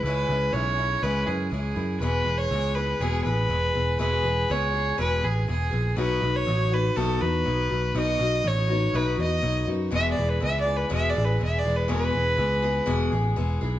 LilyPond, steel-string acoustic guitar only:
\new Staff \with { instrumentName = "Steel-string acoustic guitar" } { \time 4/4 \key e \major \tempo 4 = 122 <cis e gis cis' e'>8 <gis cis' e'>8 <e gis cis' e'>8 <gis cis' e'>8 <cis e gis cis' e'>8 <gis cis' e'>8 <e gis cis' e'>8 <gis cis' e'>8 | <e, b, e gis b gis'>8 <e gis b gis'>8 <e gis b gis'>8 <e gis b gis'>8 <e, b, e gis b gis'>8 <e gis b gis'>8 <e gis b gis'>8 <e gis b gis'>8 | <e, b, e gis b gis'>8 <e gis b gis'>8 <e gis b gis'>8 <e gis b gis'>8 <e, b, e gis b gis'>8 <e gis b gis'>8 <e gis b gis'>8 <e gis b gis'>8 | <b, fis b dis' fis'>8 <b dis' fis'>8 <fis b dis' fis'>8 <b dis' fis'>8 <b, fis b dis' fis'>8 <b dis' fis'>8 <fis b dis' fis'>8 <b dis' fis'>8 |
<b, fis b dis' fis'>8 <b dis' fis'>8 <fis b dis' fis'>8 <b dis' fis'>8 <b, fis b dis' fis'>8 <b dis' fis'>8 <fis b dis' fis'>8 <b dis' fis'>8 | <e, b, e gis b gis'>8 <e gis b gis'>8 <e gis b gis'>8 <e gis b gis'>8 <e, b, e gis b gis'>8 <e gis b gis'>8 <e gis b gis'>8 <e gis b gis'>8 | <e, b, e gis b gis'>8 <e gis b gis'>8 <e gis b gis'>8 <e gis b gis'>8 <e, b, e gis b gis'>8 <e gis b gis'>8 <e gis b gis'>8 <e gis b gis'>8 | }